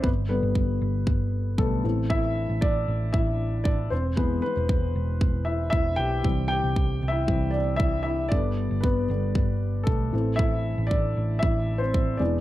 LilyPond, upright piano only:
<<
  \new Staff \with { instrumentName = "Upright piano" } { \time 4/4 \key a \minor \tempo 4 = 116 <b b'>8 b'4. r4 <a a'>4 | <e' e''>4 <d' d''>4 <e' e''>4 <d' d''>8 <c' c''>8 | b'8 <b b'>4. r8 <e' e''>8 <e' e''>8 <g' g''>8~ | <g' g''>8 <g' g''>8~ \tuplet 3/2 { <g' g''>4 <e' e''>8~ } <e' e''>8 <d' d''>8 <e' e''>8 <e' e''>8 |
<d' d''>4 <b b'>2 <a a'>4 | <e' e''>4 <d' d''>4 <e' e''>8. <c' c''>8. <d' d''>8 | }
  \new Staff \with { instrumentName = "Upright piano" } { \clef bass \time 4/4 \key a \minor r8 <d g b>2~ <d g b>8 <d g b>8 <e a c'>8 | r1 | <e gis b>8 r2. r8 | <e g c'>4. r8 <e g c'>8 r4. |
<d g b>4. <d g b>8 r4. <e a c'>8~ | <e a c'>2.~ <e a c'>8 <e gis b>8 | }
>>